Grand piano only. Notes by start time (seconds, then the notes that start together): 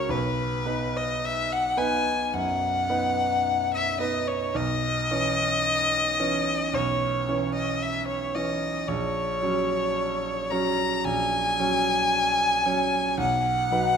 Already playing: C#4 F#4 A#4
0.09 B1
0.65 B3 D#4 B4
1.77 B3 D#4 B4
2.33 F#2
2.89 B3 D#4 B4
3.99 B3 D#4 B4
4.54 B1
5.11 E3 C#4 C#5
6.20 E3 C#4 C#5
6.73 B1
7.28 E3 C#4 C#5
8.35 E3 C#4 C#5
8.88 A#1
9.42 F#3 C#4 C#5
10.51 F#3 C#4 C#5
11.05 A#1
11.59 F#3 C#4 C#5
12.66 F#3 C#4 C#5
13.17 B1
13.71 F#3 D#4 B4